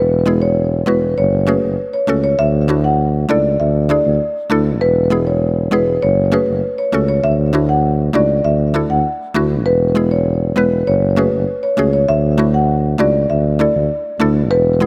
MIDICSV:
0, 0, Header, 1, 4, 480
1, 0, Start_track
1, 0, Tempo, 606061
1, 1890, Time_signature, 4, 2, 24, 8
1, 11773, End_track
2, 0, Start_track
2, 0, Title_t, "Marimba"
2, 0, Program_c, 0, 12
2, 330, Note_on_c, 0, 73, 76
2, 429, Note_off_c, 0, 73, 0
2, 690, Note_on_c, 0, 71, 81
2, 789, Note_off_c, 0, 71, 0
2, 932, Note_on_c, 0, 73, 89
2, 1030, Note_off_c, 0, 73, 0
2, 1171, Note_on_c, 0, 71, 71
2, 1270, Note_off_c, 0, 71, 0
2, 1532, Note_on_c, 0, 73, 72
2, 1630, Note_off_c, 0, 73, 0
2, 1771, Note_on_c, 0, 73, 73
2, 1870, Note_off_c, 0, 73, 0
2, 1891, Note_on_c, 0, 76, 106
2, 1990, Note_off_c, 0, 76, 0
2, 2251, Note_on_c, 0, 78, 73
2, 2350, Note_off_c, 0, 78, 0
2, 2611, Note_on_c, 0, 74, 83
2, 2710, Note_off_c, 0, 74, 0
2, 2849, Note_on_c, 0, 76, 86
2, 2949, Note_off_c, 0, 76, 0
2, 3090, Note_on_c, 0, 74, 78
2, 3189, Note_off_c, 0, 74, 0
2, 3811, Note_on_c, 0, 71, 110
2, 3910, Note_off_c, 0, 71, 0
2, 4172, Note_on_c, 0, 73, 74
2, 4271, Note_off_c, 0, 73, 0
2, 4533, Note_on_c, 0, 71, 82
2, 4631, Note_off_c, 0, 71, 0
2, 4772, Note_on_c, 0, 73, 87
2, 4871, Note_off_c, 0, 73, 0
2, 5012, Note_on_c, 0, 71, 84
2, 5111, Note_off_c, 0, 71, 0
2, 5372, Note_on_c, 0, 73, 77
2, 5470, Note_off_c, 0, 73, 0
2, 5611, Note_on_c, 0, 73, 80
2, 5710, Note_off_c, 0, 73, 0
2, 5731, Note_on_c, 0, 76, 101
2, 5830, Note_off_c, 0, 76, 0
2, 6090, Note_on_c, 0, 78, 72
2, 6190, Note_off_c, 0, 78, 0
2, 6451, Note_on_c, 0, 74, 81
2, 6550, Note_off_c, 0, 74, 0
2, 6689, Note_on_c, 0, 76, 88
2, 6789, Note_off_c, 0, 76, 0
2, 7049, Note_on_c, 0, 78, 69
2, 7149, Note_off_c, 0, 78, 0
2, 7648, Note_on_c, 0, 71, 97
2, 7748, Note_off_c, 0, 71, 0
2, 8010, Note_on_c, 0, 73, 75
2, 8109, Note_off_c, 0, 73, 0
2, 8371, Note_on_c, 0, 71, 85
2, 8470, Note_off_c, 0, 71, 0
2, 8612, Note_on_c, 0, 73, 87
2, 8711, Note_off_c, 0, 73, 0
2, 8850, Note_on_c, 0, 71, 70
2, 8949, Note_off_c, 0, 71, 0
2, 9211, Note_on_c, 0, 73, 74
2, 9310, Note_off_c, 0, 73, 0
2, 9451, Note_on_c, 0, 73, 71
2, 9550, Note_off_c, 0, 73, 0
2, 9571, Note_on_c, 0, 76, 107
2, 9670, Note_off_c, 0, 76, 0
2, 9933, Note_on_c, 0, 78, 70
2, 10031, Note_off_c, 0, 78, 0
2, 10292, Note_on_c, 0, 74, 83
2, 10390, Note_off_c, 0, 74, 0
2, 10531, Note_on_c, 0, 76, 85
2, 10630, Note_off_c, 0, 76, 0
2, 10771, Note_on_c, 0, 74, 79
2, 10870, Note_off_c, 0, 74, 0
2, 11490, Note_on_c, 0, 71, 113
2, 11589, Note_off_c, 0, 71, 0
2, 11773, End_track
3, 0, Start_track
3, 0, Title_t, "Synth pluck"
3, 0, Program_c, 1, 84
3, 203, Note_on_c, 1, 56, 75
3, 208, Note_on_c, 1, 59, 68
3, 214, Note_on_c, 1, 64, 70
3, 219, Note_on_c, 1, 68, 83
3, 302, Note_off_c, 1, 56, 0
3, 305, Note_off_c, 1, 59, 0
3, 308, Note_off_c, 1, 64, 0
3, 310, Note_off_c, 1, 68, 0
3, 682, Note_on_c, 1, 56, 80
3, 688, Note_on_c, 1, 59, 72
3, 692, Note_on_c, 1, 64, 72
3, 697, Note_on_c, 1, 66, 84
3, 782, Note_off_c, 1, 56, 0
3, 785, Note_off_c, 1, 59, 0
3, 787, Note_off_c, 1, 64, 0
3, 789, Note_off_c, 1, 66, 0
3, 1161, Note_on_c, 1, 57, 75
3, 1167, Note_on_c, 1, 61, 70
3, 1172, Note_on_c, 1, 66, 72
3, 1177, Note_on_c, 1, 68, 84
3, 1261, Note_off_c, 1, 57, 0
3, 1264, Note_off_c, 1, 61, 0
3, 1267, Note_off_c, 1, 66, 0
3, 1269, Note_off_c, 1, 68, 0
3, 1642, Note_on_c, 1, 57, 74
3, 1648, Note_on_c, 1, 61, 71
3, 1653, Note_on_c, 1, 66, 71
3, 1658, Note_on_c, 1, 69, 84
3, 1742, Note_off_c, 1, 57, 0
3, 1745, Note_off_c, 1, 61, 0
3, 1747, Note_off_c, 1, 66, 0
3, 1750, Note_off_c, 1, 69, 0
3, 2123, Note_on_c, 1, 57, 74
3, 2129, Note_on_c, 1, 62, 67
3, 2133, Note_on_c, 1, 64, 68
3, 2139, Note_on_c, 1, 66, 83
3, 2222, Note_off_c, 1, 57, 0
3, 2225, Note_off_c, 1, 62, 0
3, 2227, Note_off_c, 1, 64, 0
3, 2230, Note_off_c, 1, 66, 0
3, 2603, Note_on_c, 1, 57, 79
3, 2608, Note_on_c, 1, 62, 72
3, 2612, Note_on_c, 1, 64, 74
3, 2618, Note_on_c, 1, 69, 88
3, 2702, Note_off_c, 1, 57, 0
3, 2705, Note_off_c, 1, 62, 0
3, 2707, Note_off_c, 1, 64, 0
3, 2710, Note_off_c, 1, 69, 0
3, 3082, Note_on_c, 1, 57, 73
3, 3088, Note_on_c, 1, 62, 71
3, 3092, Note_on_c, 1, 64, 68
3, 3098, Note_on_c, 1, 68, 85
3, 3182, Note_off_c, 1, 57, 0
3, 3185, Note_off_c, 1, 62, 0
3, 3187, Note_off_c, 1, 64, 0
3, 3190, Note_off_c, 1, 68, 0
3, 3562, Note_on_c, 1, 57, 88
3, 3568, Note_on_c, 1, 62, 84
3, 3572, Note_on_c, 1, 64, 81
3, 3577, Note_on_c, 1, 69, 100
3, 3662, Note_off_c, 1, 57, 0
3, 3665, Note_off_c, 1, 62, 0
3, 3667, Note_off_c, 1, 64, 0
3, 3669, Note_off_c, 1, 69, 0
3, 4042, Note_on_c, 1, 56, 72
3, 4047, Note_on_c, 1, 59, 67
3, 4053, Note_on_c, 1, 64, 71
3, 4057, Note_on_c, 1, 68, 85
3, 4142, Note_off_c, 1, 56, 0
3, 4144, Note_off_c, 1, 59, 0
3, 4147, Note_off_c, 1, 64, 0
3, 4149, Note_off_c, 1, 68, 0
3, 4524, Note_on_c, 1, 56, 79
3, 4528, Note_on_c, 1, 59, 73
3, 4533, Note_on_c, 1, 64, 68
3, 4538, Note_on_c, 1, 68, 90
3, 4623, Note_off_c, 1, 56, 0
3, 4625, Note_off_c, 1, 59, 0
3, 4627, Note_off_c, 1, 64, 0
3, 4630, Note_off_c, 1, 68, 0
3, 5003, Note_on_c, 1, 57, 75
3, 5007, Note_on_c, 1, 61, 72
3, 5012, Note_on_c, 1, 66, 69
3, 5017, Note_on_c, 1, 68, 84
3, 5102, Note_off_c, 1, 57, 0
3, 5104, Note_off_c, 1, 61, 0
3, 5107, Note_off_c, 1, 66, 0
3, 5109, Note_off_c, 1, 68, 0
3, 5484, Note_on_c, 1, 57, 76
3, 5489, Note_on_c, 1, 61, 70
3, 5494, Note_on_c, 1, 66, 69
3, 5499, Note_on_c, 1, 69, 83
3, 5583, Note_off_c, 1, 57, 0
3, 5585, Note_off_c, 1, 61, 0
3, 5588, Note_off_c, 1, 66, 0
3, 5590, Note_off_c, 1, 69, 0
3, 5963, Note_on_c, 1, 57, 74
3, 5968, Note_on_c, 1, 62, 69
3, 5972, Note_on_c, 1, 64, 72
3, 5978, Note_on_c, 1, 66, 81
3, 6062, Note_off_c, 1, 57, 0
3, 6064, Note_off_c, 1, 62, 0
3, 6067, Note_off_c, 1, 64, 0
3, 6070, Note_off_c, 1, 66, 0
3, 6441, Note_on_c, 1, 57, 80
3, 6446, Note_on_c, 1, 62, 71
3, 6451, Note_on_c, 1, 64, 71
3, 6457, Note_on_c, 1, 66, 82
3, 6541, Note_off_c, 1, 57, 0
3, 6544, Note_off_c, 1, 62, 0
3, 6546, Note_off_c, 1, 64, 0
3, 6549, Note_off_c, 1, 66, 0
3, 6921, Note_on_c, 1, 57, 76
3, 6926, Note_on_c, 1, 62, 73
3, 6931, Note_on_c, 1, 64, 71
3, 6936, Note_on_c, 1, 69, 83
3, 7021, Note_off_c, 1, 57, 0
3, 7024, Note_off_c, 1, 62, 0
3, 7026, Note_off_c, 1, 64, 0
3, 7029, Note_off_c, 1, 69, 0
3, 7401, Note_on_c, 1, 57, 92
3, 7406, Note_on_c, 1, 62, 82
3, 7410, Note_on_c, 1, 64, 83
3, 7415, Note_on_c, 1, 66, 97
3, 7501, Note_off_c, 1, 57, 0
3, 7504, Note_off_c, 1, 62, 0
3, 7506, Note_off_c, 1, 64, 0
3, 7508, Note_off_c, 1, 66, 0
3, 7881, Note_on_c, 1, 56, 74
3, 7886, Note_on_c, 1, 59, 69
3, 7892, Note_on_c, 1, 64, 68
3, 7896, Note_on_c, 1, 68, 85
3, 7981, Note_off_c, 1, 56, 0
3, 7984, Note_off_c, 1, 59, 0
3, 7987, Note_off_c, 1, 64, 0
3, 7989, Note_off_c, 1, 68, 0
3, 8362, Note_on_c, 1, 56, 77
3, 8366, Note_on_c, 1, 59, 68
3, 8371, Note_on_c, 1, 64, 72
3, 8377, Note_on_c, 1, 71, 86
3, 8462, Note_off_c, 1, 56, 0
3, 8464, Note_off_c, 1, 59, 0
3, 8466, Note_off_c, 1, 64, 0
3, 8469, Note_off_c, 1, 71, 0
3, 8842, Note_on_c, 1, 57, 77
3, 8848, Note_on_c, 1, 61, 71
3, 8852, Note_on_c, 1, 66, 69
3, 8857, Note_on_c, 1, 68, 83
3, 8942, Note_off_c, 1, 57, 0
3, 8945, Note_off_c, 1, 61, 0
3, 8947, Note_off_c, 1, 66, 0
3, 8950, Note_off_c, 1, 68, 0
3, 9322, Note_on_c, 1, 57, 75
3, 9327, Note_on_c, 1, 61, 70
3, 9332, Note_on_c, 1, 66, 68
3, 9337, Note_on_c, 1, 68, 83
3, 9422, Note_off_c, 1, 57, 0
3, 9424, Note_off_c, 1, 61, 0
3, 9427, Note_off_c, 1, 66, 0
3, 9429, Note_off_c, 1, 68, 0
3, 9802, Note_on_c, 1, 57, 76
3, 9806, Note_on_c, 1, 62, 68
3, 9812, Note_on_c, 1, 64, 68
3, 9816, Note_on_c, 1, 66, 87
3, 9902, Note_off_c, 1, 57, 0
3, 9903, Note_off_c, 1, 62, 0
3, 9907, Note_off_c, 1, 64, 0
3, 9909, Note_off_c, 1, 66, 0
3, 10282, Note_on_c, 1, 57, 76
3, 10288, Note_on_c, 1, 62, 70
3, 10293, Note_on_c, 1, 64, 72
3, 10298, Note_on_c, 1, 66, 87
3, 10382, Note_off_c, 1, 57, 0
3, 10385, Note_off_c, 1, 62, 0
3, 10387, Note_off_c, 1, 64, 0
3, 10390, Note_off_c, 1, 66, 0
3, 10765, Note_on_c, 1, 57, 73
3, 10770, Note_on_c, 1, 62, 69
3, 10775, Note_on_c, 1, 64, 68
3, 10780, Note_on_c, 1, 69, 83
3, 10863, Note_off_c, 1, 57, 0
3, 10866, Note_off_c, 1, 62, 0
3, 10868, Note_off_c, 1, 64, 0
3, 10871, Note_off_c, 1, 69, 0
3, 11243, Note_on_c, 1, 57, 90
3, 11248, Note_on_c, 1, 62, 82
3, 11253, Note_on_c, 1, 64, 80
3, 11257, Note_on_c, 1, 69, 99
3, 11342, Note_off_c, 1, 57, 0
3, 11345, Note_off_c, 1, 62, 0
3, 11347, Note_off_c, 1, 64, 0
3, 11350, Note_off_c, 1, 69, 0
3, 11724, Note_on_c, 1, 56, 79
3, 11729, Note_on_c, 1, 59, 68
3, 11733, Note_on_c, 1, 64, 71
3, 11738, Note_on_c, 1, 68, 83
3, 11773, Note_off_c, 1, 56, 0
3, 11773, Note_off_c, 1, 59, 0
3, 11773, Note_off_c, 1, 64, 0
3, 11773, Note_off_c, 1, 68, 0
3, 11773, End_track
4, 0, Start_track
4, 0, Title_t, "Tuba"
4, 0, Program_c, 2, 58
4, 0, Note_on_c, 2, 28, 104
4, 658, Note_off_c, 2, 28, 0
4, 690, Note_on_c, 2, 28, 81
4, 898, Note_off_c, 2, 28, 0
4, 930, Note_on_c, 2, 30, 107
4, 1242, Note_off_c, 2, 30, 0
4, 1291, Note_on_c, 2, 30, 87
4, 1394, Note_off_c, 2, 30, 0
4, 1650, Note_on_c, 2, 37, 82
4, 1858, Note_off_c, 2, 37, 0
4, 1890, Note_on_c, 2, 38, 107
4, 2578, Note_off_c, 2, 38, 0
4, 2611, Note_on_c, 2, 37, 85
4, 2818, Note_off_c, 2, 37, 0
4, 2850, Note_on_c, 2, 38, 95
4, 3162, Note_off_c, 2, 38, 0
4, 3210, Note_on_c, 2, 38, 93
4, 3314, Note_off_c, 2, 38, 0
4, 3570, Note_on_c, 2, 38, 94
4, 3810, Note_on_c, 2, 28, 107
4, 3822, Note_off_c, 2, 38, 0
4, 4498, Note_off_c, 2, 28, 0
4, 4530, Note_on_c, 2, 28, 81
4, 4738, Note_off_c, 2, 28, 0
4, 4771, Note_on_c, 2, 30, 103
4, 5082, Note_off_c, 2, 30, 0
4, 5131, Note_on_c, 2, 30, 89
4, 5234, Note_off_c, 2, 30, 0
4, 5490, Note_on_c, 2, 37, 83
4, 5698, Note_off_c, 2, 37, 0
4, 5730, Note_on_c, 2, 38, 101
4, 6418, Note_off_c, 2, 38, 0
4, 6448, Note_on_c, 2, 37, 88
4, 6657, Note_off_c, 2, 37, 0
4, 6689, Note_on_c, 2, 38, 92
4, 7001, Note_off_c, 2, 38, 0
4, 7049, Note_on_c, 2, 38, 89
4, 7153, Note_off_c, 2, 38, 0
4, 7408, Note_on_c, 2, 38, 93
4, 7648, Note_on_c, 2, 28, 104
4, 7660, Note_off_c, 2, 38, 0
4, 8337, Note_off_c, 2, 28, 0
4, 8368, Note_on_c, 2, 28, 82
4, 8577, Note_off_c, 2, 28, 0
4, 8608, Note_on_c, 2, 30, 104
4, 8921, Note_off_c, 2, 30, 0
4, 8968, Note_on_c, 2, 30, 89
4, 9073, Note_off_c, 2, 30, 0
4, 9330, Note_on_c, 2, 37, 84
4, 9538, Note_off_c, 2, 37, 0
4, 9570, Note_on_c, 2, 38, 103
4, 10258, Note_off_c, 2, 38, 0
4, 10290, Note_on_c, 2, 37, 89
4, 10498, Note_off_c, 2, 37, 0
4, 10530, Note_on_c, 2, 38, 93
4, 10842, Note_off_c, 2, 38, 0
4, 10891, Note_on_c, 2, 38, 95
4, 10994, Note_off_c, 2, 38, 0
4, 11249, Note_on_c, 2, 38, 95
4, 11491, Note_on_c, 2, 28, 103
4, 11502, Note_off_c, 2, 38, 0
4, 11773, Note_off_c, 2, 28, 0
4, 11773, End_track
0, 0, End_of_file